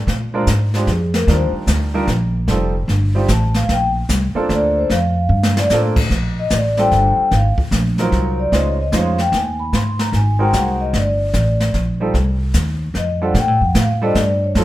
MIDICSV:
0, 0, Header, 1, 6, 480
1, 0, Start_track
1, 0, Key_signature, -2, "major"
1, 0, Tempo, 402414
1, 85, Time_signature, 3, 2, 24, 8
1, 17467, End_track
2, 0, Start_track
2, 0, Title_t, "Vibraphone"
2, 0, Program_c, 0, 11
2, 1078, Note_on_c, 0, 68, 63
2, 1363, Note_off_c, 0, 68, 0
2, 1378, Note_on_c, 0, 70, 78
2, 1531, Note_off_c, 0, 70, 0
2, 1573, Note_on_c, 0, 72, 76
2, 1745, Note_off_c, 0, 72, 0
2, 3958, Note_on_c, 0, 81, 79
2, 4243, Note_off_c, 0, 81, 0
2, 4254, Note_on_c, 0, 77, 81
2, 4409, Note_off_c, 0, 77, 0
2, 4439, Note_on_c, 0, 79, 84
2, 4615, Note_off_c, 0, 79, 0
2, 5399, Note_on_c, 0, 74, 88
2, 5683, Note_off_c, 0, 74, 0
2, 5701, Note_on_c, 0, 72, 75
2, 5852, Note_off_c, 0, 72, 0
2, 5878, Note_on_c, 0, 77, 83
2, 6603, Note_off_c, 0, 77, 0
2, 6660, Note_on_c, 0, 74, 90
2, 6812, Note_off_c, 0, 74, 0
2, 7625, Note_on_c, 0, 75, 81
2, 7775, Note_off_c, 0, 75, 0
2, 7817, Note_on_c, 0, 74, 75
2, 8093, Note_off_c, 0, 74, 0
2, 8100, Note_on_c, 0, 79, 95
2, 8693, Note_off_c, 0, 79, 0
2, 8770, Note_on_c, 0, 77, 82
2, 8943, Note_off_c, 0, 77, 0
2, 9725, Note_on_c, 0, 72, 66
2, 10007, Note_off_c, 0, 72, 0
2, 10014, Note_on_c, 0, 74, 75
2, 10170, Note_off_c, 0, 74, 0
2, 10206, Note_on_c, 0, 75, 77
2, 10342, Note_off_c, 0, 75, 0
2, 10363, Note_on_c, 0, 73, 77
2, 10500, Note_off_c, 0, 73, 0
2, 10512, Note_on_c, 0, 75, 69
2, 10655, Note_off_c, 0, 75, 0
2, 10691, Note_on_c, 0, 77, 70
2, 10971, Note_off_c, 0, 77, 0
2, 10973, Note_on_c, 0, 79, 84
2, 11130, Note_off_c, 0, 79, 0
2, 11445, Note_on_c, 0, 83, 89
2, 11606, Note_off_c, 0, 83, 0
2, 11633, Note_on_c, 0, 84, 87
2, 11921, Note_off_c, 0, 84, 0
2, 11932, Note_on_c, 0, 82, 83
2, 12089, Note_off_c, 0, 82, 0
2, 12109, Note_on_c, 0, 80, 87
2, 12400, Note_off_c, 0, 80, 0
2, 12413, Note_on_c, 0, 79, 85
2, 12570, Note_off_c, 0, 79, 0
2, 12892, Note_on_c, 0, 75, 73
2, 13050, Note_off_c, 0, 75, 0
2, 13075, Note_on_c, 0, 74, 65
2, 13973, Note_off_c, 0, 74, 0
2, 15474, Note_on_c, 0, 75, 75
2, 15762, Note_off_c, 0, 75, 0
2, 15780, Note_on_c, 0, 78, 85
2, 15934, Note_off_c, 0, 78, 0
2, 15972, Note_on_c, 0, 79, 88
2, 16251, Note_off_c, 0, 79, 0
2, 16275, Note_on_c, 0, 78, 78
2, 16421, Note_off_c, 0, 78, 0
2, 16450, Note_on_c, 0, 77, 76
2, 16730, Note_off_c, 0, 77, 0
2, 16735, Note_on_c, 0, 75, 86
2, 16891, Note_off_c, 0, 75, 0
2, 16925, Note_on_c, 0, 74, 68
2, 17207, Note_off_c, 0, 74, 0
2, 17227, Note_on_c, 0, 73, 72
2, 17377, Note_off_c, 0, 73, 0
2, 17395, Note_on_c, 0, 72, 67
2, 17467, Note_off_c, 0, 72, 0
2, 17467, End_track
3, 0, Start_track
3, 0, Title_t, "Grand piano"
3, 0, Program_c, 1, 0
3, 403, Note_on_c, 1, 56, 75
3, 403, Note_on_c, 1, 60, 67
3, 409, Note_on_c, 1, 62, 64
3, 412, Note_on_c, 1, 65, 62
3, 418, Note_on_c, 1, 70, 71
3, 552, Note_off_c, 1, 56, 0
3, 552, Note_off_c, 1, 60, 0
3, 555, Note_off_c, 1, 62, 0
3, 556, Note_off_c, 1, 65, 0
3, 559, Note_off_c, 1, 70, 0
3, 890, Note_on_c, 1, 60, 53
3, 895, Note_on_c, 1, 56, 63
3, 895, Note_on_c, 1, 65, 58
3, 898, Note_on_c, 1, 67, 62
3, 901, Note_on_c, 1, 62, 54
3, 1035, Note_off_c, 1, 60, 0
3, 1038, Note_off_c, 1, 56, 0
3, 1038, Note_off_c, 1, 65, 0
3, 1039, Note_off_c, 1, 67, 0
3, 1040, Note_off_c, 1, 62, 0
3, 1530, Note_on_c, 1, 55, 52
3, 1536, Note_on_c, 1, 63, 49
3, 1536, Note_on_c, 1, 70, 55
3, 1540, Note_on_c, 1, 62, 48
3, 1540, Note_on_c, 1, 65, 49
3, 2255, Note_off_c, 1, 55, 0
3, 2258, Note_off_c, 1, 63, 0
3, 2258, Note_off_c, 1, 70, 0
3, 2260, Note_off_c, 1, 62, 0
3, 2260, Note_off_c, 1, 65, 0
3, 2315, Note_on_c, 1, 62, 64
3, 2318, Note_on_c, 1, 55, 76
3, 2319, Note_on_c, 1, 63, 62
3, 2324, Note_on_c, 1, 65, 72
3, 2326, Note_on_c, 1, 70, 79
3, 2468, Note_off_c, 1, 62, 0
3, 2469, Note_off_c, 1, 55, 0
3, 2470, Note_off_c, 1, 63, 0
3, 2472, Note_off_c, 1, 65, 0
3, 2473, Note_off_c, 1, 70, 0
3, 2969, Note_on_c, 1, 55, 56
3, 2972, Note_on_c, 1, 63, 50
3, 2974, Note_on_c, 1, 60, 55
3, 2978, Note_on_c, 1, 65, 49
3, 2981, Note_on_c, 1, 69, 67
3, 3246, Note_off_c, 1, 55, 0
3, 3247, Note_off_c, 1, 63, 0
3, 3248, Note_off_c, 1, 60, 0
3, 3250, Note_off_c, 1, 65, 0
3, 3252, Note_off_c, 1, 69, 0
3, 3757, Note_on_c, 1, 55, 59
3, 3757, Note_on_c, 1, 60, 62
3, 3767, Note_on_c, 1, 63, 55
3, 3768, Note_on_c, 1, 65, 59
3, 3772, Note_on_c, 1, 67, 68
3, 3908, Note_off_c, 1, 55, 0
3, 3908, Note_off_c, 1, 60, 0
3, 3913, Note_off_c, 1, 63, 0
3, 3913, Note_off_c, 1, 65, 0
3, 3915, Note_off_c, 1, 67, 0
3, 5190, Note_on_c, 1, 58, 66
3, 5193, Note_on_c, 1, 60, 64
3, 5198, Note_on_c, 1, 62, 69
3, 5203, Note_on_c, 1, 65, 67
3, 5203, Note_on_c, 1, 69, 78
3, 5808, Note_off_c, 1, 58, 0
3, 5809, Note_off_c, 1, 60, 0
3, 5811, Note_off_c, 1, 62, 0
3, 5814, Note_off_c, 1, 65, 0
3, 5814, Note_off_c, 1, 69, 0
3, 6814, Note_on_c, 1, 58, 75
3, 6816, Note_on_c, 1, 60, 64
3, 6820, Note_on_c, 1, 62, 65
3, 6820, Note_on_c, 1, 65, 67
3, 6824, Note_on_c, 1, 69, 81
3, 7088, Note_off_c, 1, 58, 0
3, 7089, Note_off_c, 1, 60, 0
3, 7091, Note_off_c, 1, 62, 0
3, 7091, Note_off_c, 1, 65, 0
3, 7093, Note_off_c, 1, 69, 0
3, 8078, Note_on_c, 1, 55, 62
3, 8090, Note_on_c, 1, 60, 65
3, 8091, Note_on_c, 1, 65, 55
3, 8092, Note_on_c, 1, 62, 59
3, 8096, Note_on_c, 1, 69, 76
3, 8693, Note_off_c, 1, 55, 0
3, 8699, Note_off_c, 1, 60, 0
3, 8699, Note_off_c, 1, 62, 0
3, 8699, Note_off_c, 1, 65, 0
3, 8701, Note_off_c, 1, 69, 0
3, 9531, Note_on_c, 1, 54, 65
3, 9533, Note_on_c, 1, 63, 58
3, 9535, Note_on_c, 1, 60, 61
3, 9541, Note_on_c, 1, 70, 73
3, 9544, Note_on_c, 1, 65, 64
3, 10140, Note_off_c, 1, 54, 0
3, 10141, Note_off_c, 1, 63, 0
3, 10142, Note_off_c, 1, 60, 0
3, 10145, Note_off_c, 1, 70, 0
3, 10146, Note_off_c, 1, 65, 0
3, 10164, Note_on_c, 1, 56, 52
3, 10167, Note_on_c, 1, 63, 51
3, 10171, Note_on_c, 1, 61, 45
3, 10172, Note_on_c, 1, 65, 49
3, 10174, Note_on_c, 1, 72, 57
3, 10445, Note_off_c, 1, 56, 0
3, 10446, Note_off_c, 1, 63, 0
3, 10448, Note_off_c, 1, 61, 0
3, 10448, Note_off_c, 1, 65, 0
3, 10450, Note_off_c, 1, 72, 0
3, 10647, Note_on_c, 1, 61, 60
3, 10648, Note_on_c, 1, 63, 57
3, 10650, Note_on_c, 1, 56, 62
3, 10654, Note_on_c, 1, 65, 61
3, 10658, Note_on_c, 1, 72, 72
3, 10926, Note_off_c, 1, 61, 0
3, 10927, Note_off_c, 1, 63, 0
3, 10928, Note_off_c, 1, 56, 0
3, 10930, Note_off_c, 1, 65, 0
3, 10932, Note_off_c, 1, 72, 0
3, 12394, Note_on_c, 1, 56, 66
3, 12394, Note_on_c, 1, 60, 57
3, 12399, Note_on_c, 1, 63, 57
3, 12405, Note_on_c, 1, 66, 60
3, 12407, Note_on_c, 1, 70, 67
3, 13011, Note_off_c, 1, 56, 0
3, 13012, Note_off_c, 1, 60, 0
3, 13014, Note_off_c, 1, 63, 0
3, 13017, Note_off_c, 1, 66, 0
3, 13018, Note_off_c, 1, 70, 0
3, 14317, Note_on_c, 1, 60, 55
3, 14323, Note_on_c, 1, 55, 63
3, 14328, Note_on_c, 1, 63, 56
3, 14332, Note_on_c, 1, 65, 50
3, 14332, Note_on_c, 1, 69, 62
3, 14470, Note_off_c, 1, 60, 0
3, 14473, Note_off_c, 1, 55, 0
3, 14475, Note_off_c, 1, 63, 0
3, 14477, Note_off_c, 1, 69, 0
3, 14478, Note_off_c, 1, 65, 0
3, 15763, Note_on_c, 1, 55, 58
3, 15766, Note_on_c, 1, 62, 61
3, 15768, Note_on_c, 1, 60, 54
3, 15768, Note_on_c, 1, 65, 62
3, 15772, Note_on_c, 1, 69, 67
3, 15913, Note_off_c, 1, 55, 0
3, 15914, Note_off_c, 1, 62, 0
3, 15915, Note_off_c, 1, 65, 0
3, 15916, Note_off_c, 1, 60, 0
3, 15917, Note_off_c, 1, 69, 0
3, 16718, Note_on_c, 1, 55, 70
3, 16727, Note_on_c, 1, 65, 68
3, 16728, Note_on_c, 1, 60, 68
3, 16729, Note_on_c, 1, 62, 62
3, 16729, Note_on_c, 1, 69, 82
3, 16870, Note_off_c, 1, 55, 0
3, 16874, Note_off_c, 1, 65, 0
3, 16875, Note_off_c, 1, 60, 0
3, 16876, Note_off_c, 1, 62, 0
3, 16876, Note_off_c, 1, 69, 0
3, 17374, Note_on_c, 1, 60, 59
3, 17377, Note_on_c, 1, 54, 66
3, 17381, Note_on_c, 1, 65, 56
3, 17385, Note_on_c, 1, 63, 58
3, 17385, Note_on_c, 1, 69, 76
3, 17467, Note_off_c, 1, 54, 0
3, 17467, Note_off_c, 1, 60, 0
3, 17467, Note_off_c, 1, 63, 0
3, 17467, Note_off_c, 1, 65, 0
3, 17467, Note_off_c, 1, 69, 0
3, 17467, End_track
4, 0, Start_track
4, 0, Title_t, "Upright bass"
4, 0, Program_c, 2, 32
4, 81, Note_on_c, 2, 46, 81
4, 548, Note_off_c, 2, 46, 0
4, 561, Note_on_c, 2, 44, 83
4, 1028, Note_off_c, 2, 44, 0
4, 1038, Note_on_c, 2, 41, 84
4, 1507, Note_off_c, 2, 41, 0
4, 1518, Note_on_c, 2, 39, 84
4, 1810, Note_off_c, 2, 39, 0
4, 1992, Note_on_c, 2, 38, 76
4, 2463, Note_off_c, 2, 38, 0
4, 2472, Note_on_c, 2, 34, 91
4, 2943, Note_off_c, 2, 34, 0
4, 2952, Note_on_c, 2, 29, 80
4, 3423, Note_off_c, 2, 29, 0
4, 3432, Note_on_c, 2, 31, 86
4, 3903, Note_off_c, 2, 31, 0
4, 3915, Note_on_c, 2, 33, 92
4, 4384, Note_off_c, 2, 33, 0
4, 4399, Note_on_c, 2, 34, 76
4, 4867, Note_off_c, 2, 34, 0
4, 4877, Note_on_c, 2, 36, 88
4, 5169, Note_off_c, 2, 36, 0
4, 5358, Note_on_c, 2, 38, 96
4, 5826, Note_off_c, 2, 38, 0
4, 5840, Note_on_c, 2, 41, 90
4, 6305, Note_off_c, 2, 41, 0
4, 6312, Note_on_c, 2, 43, 88
4, 6783, Note_off_c, 2, 43, 0
4, 6803, Note_on_c, 2, 45, 83
4, 7269, Note_off_c, 2, 45, 0
4, 7275, Note_on_c, 2, 34, 73
4, 7745, Note_off_c, 2, 34, 0
4, 7759, Note_on_c, 2, 33, 78
4, 8228, Note_off_c, 2, 33, 0
4, 8246, Note_on_c, 2, 31, 80
4, 8534, Note_off_c, 2, 31, 0
4, 8722, Note_on_c, 2, 32, 83
4, 9012, Note_off_c, 2, 32, 0
4, 9200, Note_on_c, 2, 34, 89
4, 9669, Note_off_c, 2, 34, 0
4, 9685, Note_on_c, 2, 36, 82
4, 10151, Note_off_c, 2, 36, 0
4, 10164, Note_on_c, 2, 37, 83
4, 10631, Note_off_c, 2, 37, 0
4, 10641, Note_on_c, 2, 41, 85
4, 11110, Note_off_c, 2, 41, 0
4, 11117, Note_on_c, 2, 39, 88
4, 11587, Note_off_c, 2, 39, 0
4, 11600, Note_on_c, 2, 44, 72
4, 12069, Note_off_c, 2, 44, 0
4, 12076, Note_on_c, 2, 32, 84
4, 12547, Note_off_c, 2, 32, 0
4, 12562, Note_on_c, 2, 36, 82
4, 13030, Note_off_c, 2, 36, 0
4, 13039, Note_on_c, 2, 31, 75
4, 13508, Note_off_c, 2, 31, 0
4, 13521, Note_on_c, 2, 33, 84
4, 13990, Note_off_c, 2, 33, 0
4, 14002, Note_on_c, 2, 34, 81
4, 14470, Note_off_c, 2, 34, 0
4, 14480, Note_on_c, 2, 36, 84
4, 14949, Note_off_c, 2, 36, 0
4, 14959, Note_on_c, 2, 39, 75
4, 15428, Note_off_c, 2, 39, 0
4, 15434, Note_on_c, 2, 41, 79
4, 15906, Note_off_c, 2, 41, 0
4, 15914, Note_on_c, 2, 46, 84
4, 16077, Note_off_c, 2, 46, 0
4, 16077, Note_on_c, 2, 45, 54
4, 16229, Note_off_c, 2, 45, 0
4, 16236, Note_on_c, 2, 41, 66
4, 16387, Note_off_c, 2, 41, 0
4, 16394, Note_on_c, 2, 45, 81
4, 16866, Note_off_c, 2, 45, 0
4, 16875, Note_on_c, 2, 43, 87
4, 17346, Note_off_c, 2, 43, 0
4, 17356, Note_on_c, 2, 41, 84
4, 17467, Note_off_c, 2, 41, 0
4, 17467, End_track
5, 0, Start_track
5, 0, Title_t, "Muted upright bass strokes"
5, 1817, Note_on_c, 9, 29, 33
5, 1936, Note_off_c, 9, 29, 0
5, 5185, Note_on_c, 9, 29, 41
5, 5304, Note_off_c, 9, 29, 0
5, 8552, Note_on_c, 9, 29, 38
5, 8672, Note_off_c, 9, 29, 0
5, 9034, Note_on_c, 9, 29, 32
5, 9154, Note_off_c, 9, 29, 0
5, 17467, End_track
6, 0, Start_track
6, 0, Title_t, "Drums"
6, 88, Note_on_c, 9, 36, 23
6, 93, Note_on_c, 9, 25, 42
6, 93, Note_on_c, 9, 38, 40
6, 207, Note_off_c, 9, 36, 0
6, 213, Note_off_c, 9, 38, 0
6, 561, Note_on_c, 9, 44, 49
6, 565, Note_on_c, 9, 36, 21
6, 565, Note_on_c, 9, 38, 54
6, 680, Note_off_c, 9, 44, 0
6, 684, Note_off_c, 9, 36, 0
6, 684, Note_off_c, 9, 38, 0
6, 881, Note_on_c, 9, 38, 35
6, 1000, Note_off_c, 9, 38, 0
6, 1041, Note_on_c, 9, 38, 34
6, 1042, Note_on_c, 9, 36, 20
6, 1161, Note_off_c, 9, 38, 0
6, 1162, Note_off_c, 9, 36, 0
6, 1358, Note_on_c, 9, 38, 53
6, 1478, Note_off_c, 9, 38, 0
6, 1521, Note_on_c, 9, 36, 21
6, 1526, Note_off_c, 9, 25, 0
6, 1526, Note_on_c, 9, 25, 47
6, 1526, Note_on_c, 9, 38, 43
6, 1641, Note_off_c, 9, 36, 0
6, 1645, Note_off_c, 9, 38, 0
6, 1995, Note_on_c, 9, 44, 50
6, 1999, Note_on_c, 9, 36, 23
6, 1999, Note_on_c, 9, 38, 59
6, 2115, Note_off_c, 9, 44, 0
6, 2118, Note_off_c, 9, 36, 0
6, 2118, Note_off_c, 9, 38, 0
6, 2476, Note_on_c, 9, 36, 18
6, 2476, Note_on_c, 9, 38, 39
6, 2595, Note_off_c, 9, 38, 0
6, 2596, Note_off_c, 9, 36, 0
6, 2956, Note_off_c, 9, 25, 0
6, 2956, Note_on_c, 9, 25, 47
6, 2956, Note_on_c, 9, 38, 44
6, 2957, Note_on_c, 9, 36, 24
6, 3075, Note_off_c, 9, 38, 0
6, 3076, Note_off_c, 9, 36, 0
6, 3439, Note_on_c, 9, 36, 18
6, 3444, Note_on_c, 9, 38, 36
6, 3559, Note_off_c, 9, 36, 0
6, 3563, Note_off_c, 9, 38, 0
6, 3916, Note_on_c, 9, 44, 57
6, 3920, Note_on_c, 9, 36, 21
6, 3920, Note_on_c, 9, 38, 51
6, 4036, Note_off_c, 9, 44, 0
6, 4039, Note_off_c, 9, 36, 0
6, 4039, Note_off_c, 9, 38, 0
6, 4227, Note_on_c, 9, 38, 41
6, 4346, Note_off_c, 9, 38, 0
6, 4400, Note_on_c, 9, 36, 27
6, 4401, Note_off_c, 9, 25, 0
6, 4401, Note_on_c, 9, 25, 50
6, 4401, Note_on_c, 9, 38, 44
6, 4519, Note_off_c, 9, 36, 0
6, 4521, Note_off_c, 9, 38, 0
6, 4880, Note_on_c, 9, 44, 64
6, 4882, Note_on_c, 9, 36, 23
6, 4884, Note_on_c, 9, 38, 58
6, 4999, Note_off_c, 9, 44, 0
6, 5001, Note_off_c, 9, 36, 0
6, 5003, Note_off_c, 9, 38, 0
6, 5362, Note_on_c, 9, 36, 18
6, 5365, Note_on_c, 9, 38, 42
6, 5482, Note_off_c, 9, 36, 0
6, 5485, Note_off_c, 9, 38, 0
6, 5843, Note_on_c, 9, 36, 22
6, 5847, Note_off_c, 9, 25, 0
6, 5847, Note_on_c, 9, 25, 49
6, 5847, Note_on_c, 9, 38, 44
6, 5962, Note_off_c, 9, 36, 0
6, 5966, Note_off_c, 9, 38, 0
6, 6481, Note_on_c, 9, 38, 65
6, 6600, Note_off_c, 9, 38, 0
6, 6642, Note_on_c, 9, 38, 76
6, 6761, Note_off_c, 9, 38, 0
6, 6797, Note_on_c, 9, 44, 54
6, 6801, Note_on_c, 9, 38, 51
6, 6916, Note_off_c, 9, 44, 0
6, 6920, Note_off_c, 9, 38, 0
6, 7113, Note_on_c, 9, 36, 68
6, 7113, Note_on_c, 9, 49, 78
6, 7232, Note_off_c, 9, 36, 0
6, 7233, Note_off_c, 9, 49, 0
6, 7282, Note_on_c, 9, 36, 24
6, 7285, Note_off_c, 9, 25, 0
6, 7285, Note_on_c, 9, 25, 41
6, 7285, Note_on_c, 9, 38, 40
6, 7402, Note_off_c, 9, 36, 0
6, 7404, Note_off_c, 9, 38, 0
6, 7757, Note_on_c, 9, 44, 44
6, 7761, Note_on_c, 9, 38, 56
6, 7763, Note_on_c, 9, 36, 24
6, 7876, Note_off_c, 9, 44, 0
6, 7880, Note_off_c, 9, 38, 0
6, 7882, Note_off_c, 9, 36, 0
6, 8078, Note_on_c, 9, 38, 33
6, 8197, Note_off_c, 9, 38, 0
6, 8247, Note_on_c, 9, 36, 22
6, 8250, Note_on_c, 9, 38, 34
6, 8367, Note_off_c, 9, 36, 0
6, 8369, Note_off_c, 9, 38, 0
6, 8726, Note_off_c, 9, 25, 0
6, 8726, Note_on_c, 9, 25, 51
6, 8726, Note_on_c, 9, 36, 19
6, 8726, Note_on_c, 9, 38, 40
6, 8845, Note_off_c, 9, 38, 0
6, 8846, Note_off_c, 9, 36, 0
6, 9039, Note_on_c, 9, 36, 51
6, 9158, Note_off_c, 9, 36, 0
6, 9207, Note_on_c, 9, 44, 46
6, 9208, Note_on_c, 9, 36, 18
6, 9210, Note_on_c, 9, 38, 52
6, 9326, Note_off_c, 9, 44, 0
6, 9327, Note_off_c, 9, 36, 0
6, 9329, Note_off_c, 9, 38, 0
6, 9517, Note_on_c, 9, 38, 35
6, 9636, Note_off_c, 9, 38, 0
6, 9687, Note_on_c, 9, 36, 20
6, 9688, Note_on_c, 9, 38, 33
6, 9807, Note_off_c, 9, 36, 0
6, 9808, Note_off_c, 9, 38, 0
6, 10166, Note_on_c, 9, 36, 18
6, 10171, Note_off_c, 9, 25, 0
6, 10171, Note_on_c, 9, 25, 43
6, 10171, Note_on_c, 9, 38, 44
6, 10286, Note_off_c, 9, 36, 0
6, 10290, Note_off_c, 9, 38, 0
6, 10643, Note_on_c, 9, 44, 49
6, 10645, Note_on_c, 9, 36, 19
6, 10647, Note_on_c, 9, 38, 54
6, 10763, Note_off_c, 9, 44, 0
6, 10764, Note_off_c, 9, 36, 0
6, 10766, Note_off_c, 9, 38, 0
6, 10954, Note_on_c, 9, 38, 39
6, 11074, Note_off_c, 9, 38, 0
6, 11124, Note_on_c, 9, 36, 18
6, 11124, Note_on_c, 9, 38, 38
6, 11243, Note_off_c, 9, 36, 0
6, 11244, Note_off_c, 9, 38, 0
6, 11605, Note_on_c, 9, 36, 19
6, 11608, Note_off_c, 9, 25, 0
6, 11608, Note_on_c, 9, 25, 48
6, 11608, Note_on_c, 9, 38, 44
6, 11724, Note_off_c, 9, 36, 0
6, 11727, Note_off_c, 9, 38, 0
6, 11919, Note_on_c, 9, 38, 45
6, 12038, Note_off_c, 9, 38, 0
6, 12084, Note_on_c, 9, 36, 17
6, 12084, Note_on_c, 9, 38, 38
6, 12203, Note_off_c, 9, 36, 0
6, 12203, Note_off_c, 9, 38, 0
6, 12564, Note_on_c, 9, 44, 42
6, 12565, Note_on_c, 9, 36, 21
6, 12568, Note_on_c, 9, 38, 51
6, 12684, Note_off_c, 9, 36, 0
6, 12684, Note_off_c, 9, 44, 0
6, 12687, Note_off_c, 9, 38, 0
6, 13044, Note_off_c, 9, 25, 0
6, 13044, Note_on_c, 9, 25, 42
6, 13044, Note_on_c, 9, 38, 45
6, 13045, Note_on_c, 9, 36, 22
6, 13164, Note_off_c, 9, 36, 0
6, 13164, Note_off_c, 9, 38, 0
6, 13521, Note_on_c, 9, 44, 44
6, 13524, Note_on_c, 9, 36, 26
6, 13524, Note_on_c, 9, 38, 54
6, 13640, Note_off_c, 9, 44, 0
6, 13644, Note_off_c, 9, 36, 0
6, 13644, Note_off_c, 9, 38, 0
6, 13841, Note_on_c, 9, 38, 42
6, 13960, Note_off_c, 9, 38, 0
6, 14003, Note_on_c, 9, 38, 39
6, 14004, Note_on_c, 9, 36, 21
6, 14122, Note_off_c, 9, 38, 0
6, 14123, Note_off_c, 9, 36, 0
6, 14484, Note_on_c, 9, 36, 21
6, 14488, Note_off_c, 9, 25, 0
6, 14488, Note_on_c, 9, 25, 50
6, 14488, Note_on_c, 9, 38, 44
6, 14603, Note_off_c, 9, 36, 0
6, 14607, Note_off_c, 9, 38, 0
6, 14956, Note_on_c, 9, 44, 56
6, 14960, Note_on_c, 9, 38, 50
6, 14961, Note_on_c, 9, 36, 20
6, 15075, Note_off_c, 9, 44, 0
6, 15079, Note_off_c, 9, 38, 0
6, 15080, Note_off_c, 9, 36, 0
6, 15442, Note_on_c, 9, 36, 24
6, 15444, Note_on_c, 9, 38, 37
6, 15561, Note_off_c, 9, 36, 0
6, 15564, Note_off_c, 9, 38, 0
6, 15919, Note_off_c, 9, 25, 0
6, 15919, Note_on_c, 9, 25, 42
6, 15919, Note_on_c, 9, 38, 46
6, 15920, Note_on_c, 9, 36, 24
6, 16039, Note_off_c, 9, 38, 0
6, 16040, Note_off_c, 9, 36, 0
6, 16396, Note_on_c, 9, 44, 49
6, 16400, Note_on_c, 9, 36, 23
6, 16400, Note_on_c, 9, 38, 54
6, 16516, Note_off_c, 9, 44, 0
6, 16519, Note_off_c, 9, 38, 0
6, 16520, Note_off_c, 9, 36, 0
6, 16880, Note_on_c, 9, 36, 22
6, 16880, Note_on_c, 9, 38, 43
6, 16999, Note_off_c, 9, 36, 0
6, 17000, Note_off_c, 9, 38, 0
6, 17358, Note_off_c, 9, 25, 0
6, 17358, Note_on_c, 9, 25, 52
6, 17358, Note_on_c, 9, 38, 46
6, 17360, Note_on_c, 9, 36, 28
6, 17467, Note_off_c, 9, 25, 0
6, 17467, Note_off_c, 9, 36, 0
6, 17467, Note_off_c, 9, 38, 0
6, 17467, End_track
0, 0, End_of_file